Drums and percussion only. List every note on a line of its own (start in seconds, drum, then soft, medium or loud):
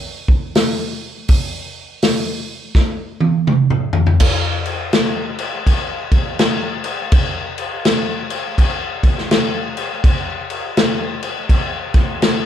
0.28 kick medium
0.55 snare loud
0.55 open hi-hat medium
1.29 kick loud
1.29 open hi-hat medium
2.03 snare loud
2.03 open hi-hat medium
2.75 kick medium
2.75 snare medium
3.21 high tom medium
3.47 mid tom medium
3.70 mid tom medium
3.93 floor tom loud
4.07 floor tom medium
4.20 kick loud
4.20 crash loud
4.20 crash medium
4.66 crash medium
4.93 snare loud
4.93 crash medium
5.39 crash medium
5.67 kick medium
5.67 crash medium
6.12 kick medium
6.12 crash medium
6.39 snare loud
6.39 crash medium
6.84 crash medium
7.12 kick loud
7.12 crash medium
7.58 crash medium
7.85 snare loud
7.85 crash medium
8.30 crash medium
8.58 kick medium
8.58 crash medium
9.03 kick medium
9.03 crash medium
9.18 snare soft
9.31 snare loud
9.31 crash medium
9.77 crash medium
10.04 kick loud
10.04 crash medium
10.50 crash medium
10.77 snare loud
10.77 crash medium
11.23 crash medium
11.49 kick medium
11.49 crash medium
11.94 kick medium
11.94 snare soft
11.94 crash medium
12.22 snare loud
12.22 crash medium